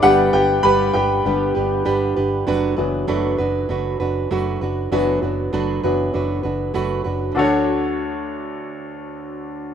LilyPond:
<<
  \new Staff \with { instrumentName = "Steel-string acoustic guitar" } { \time 4/4 \key d \major \tempo 4 = 98 <g d' g' b'>8 <d' g' b'>8 <g d' g' b'>8 <d' g' b'>8 <g d' g' b'>8 <d' g' b'>8 <g d' g' b'>8 <d' g' b'>8 | <fis a d' fis' b'>8 <d' fis' b'>8 <fis a d' fis' b'>8 <d' fis' b'>8 <a d' fis' b'>8 <d' fis' b'>8 <fis a d' fis' b'>8 <d' fis' b'>8 | <fis a d' fis' b'>8 <d' fis' b'>8 <fis a d' fis' b'>8 <d' fis' b'>8 <a d' fis' b'>8 <d' fis' b'>8 <fis a d' fis' b'>8 <d' fis' b'>8 | <d a d' fis' cis''>1 | }
  \new Staff \with { instrumentName = "Grand piano" } { \time 4/4 \key d \major <g' fis''>8 <g' g''>8 <b' b''>8 <g' g''>4 r4. | r1 | r1 | <d' fis' a' cis''>1 | }
  \new Staff \with { instrumentName = "Grand piano" } { \clef bass \time 4/4 \key d \major <d g b>8 r4. <d g b>8 r4. | r8 <e fis b>8 r2. | <e fis b>8 r4 <e fis b>8 r2 | d,1 | }
  \new Staff \with { instrumentName = "Picked electric bass" } { \clef bass \time 4/4 \key d \major g,,8 g,,8 g,,8 g,,8 g,,8 g,,8 g,,8 g,,8 | fis,,8 fis,,8 fis,,8 fis,,8 fis,,8 fis,,8 fis,,8 fis,,8 | fis,,8 fis,,8 fis,,8 fis,,8 fis,,8 fis,,8 fis,,8 fis,,8 | d,1 | }
>>